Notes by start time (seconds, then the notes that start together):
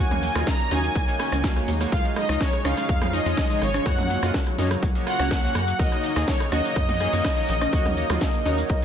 Already playing: C#3 F#3 D#4
0.00 D#2 G#3 A#3 D#4 F#4 C#5 G#5
0.11 A#3, cross-stick, mid tom, high conga, cabasa
0.23 A#3, open hi-hat
0.35 D#2 A#3 D#4 F4 F#4 D#5, cross-stick, closed hi-hat, cabasa
0.47 A#3 A#5, kick, snare, closed hi-hat, cabasa
0.60 A#3, closed hi-hat, cabasa
0.71 D#2 A#3 D#4 F#4 C#5 G#5, cross-stick, snare, open hi-hat, high conga
0.84 A#3, closed hi-hat, cabasa
0.95 C#2 A#3, kick, cross-stick, closed hi-hat, cabasa
1.08 A#3 D#4 F#4 C#5, closed hi-hat, cabasa
1.19 C#4, cross-stick, open hi-hat
1.32 C#2 A#3, cross-stick, closed hi-hat, high conga, cabasa
1.43 A#3 D#4 F#4 F5, kick, snare, closed hi-hat, cabasa
1.56 A#3 D#4 F#4 C#5, cross-stick, closed hi-hat, cabasa
1.68 D#2, open hi-hat
1.80 A#3 D#4 F#4 C#5, cross-stick, closed hi-hat, cabasa
1.92 C#2 C#3 F3 G#3 D#4 F4 C#5 F5, kick, cross-stick, closed hi-hat, cabasa
2.05 G#3, cabasa
2.16 G#3 D#5, cross-stick, open hi-hat
2.29 C#2 G#3 D#4 F4 D#5, cross-stick, closed hi-hat, cabasa
2.41 G#3 C#5, kick, snare, closed hi-hat, cabasa
2.53 G#3, cross-stick, closed hi-hat, cabasa
2.65 C#2 G#3 C#4 D#4 F4 C#5 F5, cross-stick, open hi-hat, high conga
2.77 G#3, cross-stick, closed hi-hat, cabasa
2.89 F2 G#3, kick, closed hi-hat, cabasa
3.02 G#3 D#4 F4 C#5, cross-stick, closed hi-hat, mid tom, cabasa
3.13 D#4 D#5, open hi-hat
3.26 F2 G#3 D#4 F4 C#5, closed hi-hat, cabasa
3.37 G#3, kick, cross-stick, snare, closed hi-hat, cabasa
3.50 G#3 D#4 F4 C#5, closed hi-hat, cabasa
3.61 G#1 C#5, cross-stick, open hi-hat
3.74 G#3, cross-stick, closed hi-hat, high conga, cabasa
3.86 F#2 F#3 A#3 C#4 F#4 C#5 F#5, kick, cross-stick, closed hi-hat, cabasa
3.98 F#3, mid tom, high conga, cabasa
4.10 F#3, open hi-hat
4.23 F#2 A#3 C#4 F4 F#4 D#5, cross-stick, closed hi-hat, cabasa
4.34 F#3, kick, snare, closed hi-hat, cabasa
4.46 F#3, cross-stick, closed hi-hat, cabasa
4.58 F#2 A#3 C#4 D#4 F#4 C#5, snare, open hi-hat, high conga
4.71 F#3, cross-stick, closed hi-hat, cabasa
4.83 C#2 F#3, kick, closed hi-hat, cabasa
4.95 F#3 A#3 C#4 F#4 C#5, closed hi-hat, cabasa
5.07 F4 F#5, cross-stick, open hi-hat
5.19 C#2 F#3 A#3 C#4 F#4 C#5, cross-stick, closed hi-hat, high conga, cabasa
5.31 F#3, kick, cross-stick, snare, closed hi-hat, cabasa
5.43 F#3 A#3 C#4 F#4 C#5, closed hi-hat, cabasa
5.55 F#2, cross-stick, open hi-hat
5.68 F#3, closed hi-hat, cabasa
5.79 D#2 A#3 D#4 F#4 A#4 C#5 D#5, kick, closed hi-hat, cabasa
5.92 D#4, cross-stick, cabasa
6.04 D#4, open hi-hat
6.16 D#2 A#3 D#4 F#4 G#4 D#5, cross-stick, closed hi-hat, cabasa
6.28 D#4 C#5, kick, snare, closed hi-hat, cabasa
6.40 D#4, cross-stick, closed hi-hat, cabasa
6.52 D#2 A#3 D#4 F#4 C#5 D#5, cross-stick, open hi-hat, high conga
6.65 D#4, closed hi-hat, cabasa
6.76 F#2 D#4, kick, cross-stick, closed hi-hat, cabasa
6.88 A#3 D#4 F#4 C#5, closed hi-hat, mid tom, cabasa
7.00 G#4, cross-stick, open hi-hat
7.13 F#2 A#3 D#4 F#4 C#5, closed hi-hat, cabasa
7.24 D#4, kick, cross-stick, snare, closed hi-hat, cabasa
7.37 A#3 D#4 F#4 C#5, closed hi-hat, cabasa
7.49 A#1, open hi-hat
7.61 D#4, cross-stick, closed hi-hat, high conga, cabasa
7.73 D#2 G#3 A#3 D#4 F#4 C#5, kick, closed hi-hat, cabasa
7.85 A#3, cross-stick, closed hi-hat, mid tom, high conga, cabasa
7.97 A#3, open hi-hat
8.10 D#2 A#3 D#4 F4 F#4 D#5, cross-stick, closed hi-hat, mid tom, cabasa
8.21 A#3, kick, snare, closed hi-hat, cabasa
8.34 A#3, closed hi-hat, cabasa
8.45 D#2 A#3 D#4 F#4 C#5, open hi-hat, high conga
8.58 A#3, closed hi-hat, cabasa
8.70 C#2 A#3, kick, cross-stick, closed hi-hat, cabasa